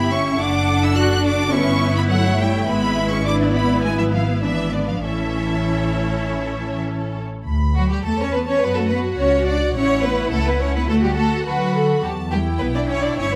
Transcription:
Already playing: G1 B3 E4 G4 E5 B5
0.12 C#4 C#6
0.40 F#1 D4 A4 F#5 D6
0.83 E4 E6
0.97 F#4 D5 F#6
1.25 D4 D6
1.53 G1 B3 C#4 E4 B4 E5 C#6
1.96 B3 B5
2.10 F#3 A3 C#5 E5 F#5
2.39 G3 G5
2.67 G#1 G#3 B3 E4 B4 E5 B5
3.11 C#4 C#6
3.25 B3 D4 B4 D5 D6
3.54 B3 B5
3.83 G#3 B4 G#5
3.98 E3 E5
4.12 F3 F5
4.42 E3 B3 D4 B4 D5 E5
4.72 D3 D5
4.88 F3 F5
5.03 A1 E3 C#4 E4 A4 C#5 E5
7.46 D2 B5
7.75 F#3 F#4
7.90 G3 G4
8.04 E2 A3 A4 A5
8.19 C#4 C#5
8.33 B3 B4
8.47 C#4 C#5
8.62 F#2 B3 F#4 B4 F#5
8.76 A3 A4
8.90 B3 B4
9.18 C#2 C#4 C#5
9.47 D4 D5
9.75 A1 C#4 E4 C#5
10.04 B3 B4
10.32 C#2 A3 A4
10.46 B3 B4
10.61 C#4 C#5
10.76 B3 B4
10.89 D2 A3 F#4 A4 F#5
11.04 G3 G4
11.17 A3 A4
11.46 D3 F#3 F#4 B4 B5
11.76 A4
12.04 E2 G4 A5
12.32 G3 E4 G4 G5
12.60 B1 B3 B4
12.75 D4 D5
12.89 C#4 C#5
13.03 D4 D5
13.17 G1 C#4 C#5 E5
13.32 B3

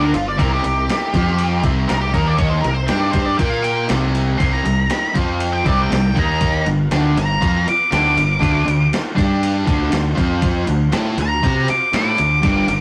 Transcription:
Already playing: D2 D3 A3 D4 F4 A#4
0.01 A#4
0.11 G1 B3 F4 A#4, ride
0.15 G2 D3
0.28 D5
0.38 C2 C3 G3 C4 D#4 E4 A#4, kick, ride
0.53 G4
0.63 C2 C3 G3 D#4 E4 G4 A#4, ride
0.87 D#4 E4 A#4, snare, ride
1.11 F2 F3 C4 F4 C5, kick, snare, ride
1.15 F4
1.39 ride
1.62 C2 C3 G3 C4 D#4 E4 A#4, kick, ride
1.88 C2 C3 G3 A#4, snare, ride
2.01 G4
2.12 D#2 D#3 A#3 D#4 A#4, kick, ride
2.27 D5
2.38 C#5, kick, ride
2.49 C5
2.59 D#4 E4 A#4
2.64 C2 C3 G3, ride
2.74 C5
2.86 G2 G3 D4 G4 G5, snare, ride
2.99 D5
3.11 G2 G3 D4 D#4 E4 G4 A#4 C5, kick, ride
3.25 D5
3.36 A#3 F4 A#4 G5, kick, ride
3.40 A#2 A#4
3.50 F5
3.60 A#3 F4 A#4 G5, ride
3.86 C3 G3 C4 D#4 E4 A#4, snare, ride
3.91 C2
4.15 D#4 E4 A#4, ride
4.38 C2 C3 G3 C4 D#4 E4 A#4 C6, kick, ride
4.53 A#5
4.63 C2 C3 G3 D#4 E4 A#4, ride
4.89 D#4 E4 A#4, snare, ride
5.14 F2 F3 C4 F4 C5, kick, ride
5.40 ride
5.53 G5
5.64 C2 C3 G3 C4 D#4 E4 A#4 D5, kick, ride
5.82 G5
5.90 C2 C3 G3, snare, ride
6.14 D#2 D#3 A#3 D#4 A#4, kick, ride
6.19 A#5
6.41 kick, ride
6.64 G1 G2 D3 B3 F4 A#4, ride
6.91 D2 D3 A3 D4, snare, ride
7.16 G1 G2 D3 B3 F4 A#4 A#5, snare, ride
7.39 F2 F3 B3 C4 F4 A#4, kick, ride
7.66 B3 F4 B4 D6, muted overdriven electric guitar stroke, muted fingered electric bass stroke, ride
7.89 D2 D3 A3 B3 D4 F4 A#4 D6, ride
7.93 snare
8.14 G1 G2 D3 B3 F4 A#4, ride
8.39 D2 D3 A3 D4 F4 F#4 C5, kick, ride
8.63 D2 D3 A3 F4 F#4 C5
8.68 ride
8.90 F4 F#4 C5, snare, ride
9.15 G2 G3 D4 G4 D5, kick, ride
9.19 snare
9.43 ride
9.65 D2 D3 A3 D4 F4, kick, ride
9.69 F#4 C5
9.91 D2 D3 A3, snare, ride
10.15 F2 F3 C4 F4 C5, kick, ride
10.42 kick, ride
10.66 D2 D3 A3 F4 F#4 C5, ride
10.92 A2 A3 E4 A4, snare, ride
11.17 D2 D3 A3 F4 F#4 B4, ride
11.21 A#5
11.42 C3 C4 F4 F#4 G4 B4 C5, kick, ride
11.66 F4 F#4 C5 D6, muted overdriven electric guitar stroke, muted fingered electric bass stroke, ride
11.92 A2 A3 E4 F4 F#4 A4 C5 D6, snare, ride
12.18 D2 D3 A3 F4 F#4 C5, ride
12.42 G1 G2 D3 G3 B3 F4 A#4, kick, ride
12.66 G1 G2 D3 B3 F4 A#4, ride

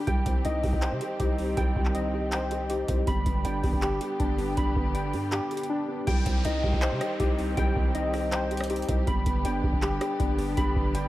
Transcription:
Already playing: G3 G4
0.07 C2 D#3 G3 C4 G5, kick, closed hi-hat
0.26 C2 C4, kick, closed hi-hat
0.45 C2 D#4 D#5, closed hi-hat
0.63 C2 G4, kick, open hi-hat
0.73 C2, kick
0.82 C5 G5, clap, closed hi-hat
0.92 C3
1.01 G4, closed hi-hat
1.20 C2 D#4 G4, kick, closed hi-hat
1.38 C4, open hi-hat
1.57 C2 G3 G5, kick, closed hi-hat
1.76 C2 C4, kick
1.85 clap
1.95 D#4 D#5, closed hi-hat
2.14 G4
2.32 C5 G5, clap, closed hi-hat
2.51 G4, closed hi-hat
2.70 D#4 G4, closed hi-hat
2.88 C2 C4, kick, closed hi-hat
3.07 G1 D3 G3 B3 G4 B5, kick, closed hi-hat
3.26 G1 B3, kick, closed hi-hat
3.45 G1 D4 G5, closed hi-hat
3.63 G1 G4, kick, open hi-hat
3.73 G1, kick
3.82 G4 G5, clap, closed hi-hat
4.01 G4, closed hi-hat
4.19 G1 D4, kick, closed hi-hat
4.38 B3, open hi-hat
4.57 G1 G3 B5, kick, closed hi-hat
4.76 G1 B3, kick
4.94 D4 G5, closed hi-hat
5.13 G2 G4, open hi-hat
5.32 G4 G5, clap, closed hi-hat
5.51 G4, closed hi-hat
5.57 closed hi-hat
5.63 closed hi-hat
5.69 D4
5.88 B3
6.07 C2 D#3 G3 C4 G4 G5, kick, closed hi-hat, downlifter
6.26 C2 C4, kick, closed hi-hat
6.45 C2 D#4 D#5, closed hi-hat
6.63 C2 G4, kick
6.73 C2, kick
6.82 C5 G5, clap, closed hi-hat
6.92 C3
7.01 G4, cross-stick, closed hi-hat
7.20 C2 D#4 G4, kick, closed hi-hat
7.38 C4, open hi-hat
7.57 C2 G3 G5, kick, closed hi-hat
7.76 C2 C4, kick
7.95 D#4 D#5, closed hi-hat
8.14 G4, cross-stick, open hi-hat
8.32 C5 G5, clap, closed hi-hat
8.51 G4, closed hi-hat
8.57 cross-stick, closed hi-hat
8.64 closed hi-hat
8.70 D#4 G4, closed hi-hat
8.76 closed hi-hat
8.82 closed hi-hat
8.88 C2 C4, kick, closed hi-hat
9.07 G1 D3 G3 B3 B5, kick, closed hi-hat
9.26 G1 B3, kick, closed hi-hat
9.45 G1 D4 G5, closed hi-hat
9.63 G1 G4, kick
9.73 G1, kick
9.82 G4 G5, clap, closed hi-hat
10.01 G4, cross-stick, closed hi-hat
10.19 G1 D4, kick, closed hi-hat
10.38 B3, open hi-hat
10.57 G1 G3 B5, kick, closed hi-hat
10.76 G1 B3, kick
10.94 D4 G5, closed hi-hat

